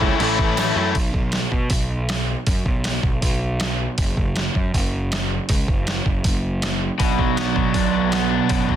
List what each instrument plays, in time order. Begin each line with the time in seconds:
Already playing: picked electric bass C#2, transistor combo organ A4 C#5 E5 B5
0.01 overdriven electric guitar A2 E3 A3 C#4 E4 A4, kick
0.20 picked electric bass A1, overdriven electric guitar A2 E3 A3 C#4 E4 A4, crash
0.39 picked electric bass A1, kick
0.57 overdriven electric guitar A2 E3 A3 C#4 E4 A4, snare, tambourine, crash
0.76 picked electric bass F#2, overdriven electric guitar A2 E3 A3 C#4 E4 A4, snare
0.95 picked electric bass B1, kick, open hi-hat
1.14 picked electric bass B1, kick
1.32 snare, open hi-hat
1.52 picked electric bass B2, kick
1.70 picked electric bass B1, kick, open hi-hat
2.09 snare, open hi-hat
2.47 picked electric bass F#2, kick, open hi-hat
2.66 picked electric bass B1, kick
2.84 snare, open hi-hat
3.03 picked electric bass B1, kick
3.22 picked electric bass B1, kick, open hi-hat
3.60 snare, open hi-hat
3.98 picked electric bass F#1, kick, open hi-hat
4.17 picked electric bass F#1, kick
4.36 snare, open hi-hat
4.55 picked electric bass F#2, kick
4.74 picked electric bass F#1, kick, open hi-hat
5.12 snare, open hi-hat
5.49 picked electric bass C#2, kick, open hi-hat
5.68 picked electric bass F#1, kick
5.87 snare, open hi-hat
6.06 picked electric bass F#1, kick
6.24 picked electric bass F#1, kick, open hi-hat
6.62 snare, open hi-hat
6.99 picked electric bass B1, overdriven electric guitar B2 F#3 B3 D4 F#4, kick, open hi-hat
7.19 picked electric bass B1, overdriven electric guitar F#3, kick
7.36 overdriven electric guitar B3, snare, open hi-hat
7.55 picked electric bass B2, overdriven electric guitar F#3, kick
7.73 picked electric bass B1, overdriven electric guitar D4, kick, open hi-hat
7.93 overdriven electric guitar F#3
8.12 overdriven electric guitar B3, snare, open hi-hat
8.30 overdriven electric guitar D4
8.49 picked electric bass F#2, overdriven electric guitar B2, kick, open hi-hat
8.69 picked electric bass B1, overdriven electric guitar F#3, kick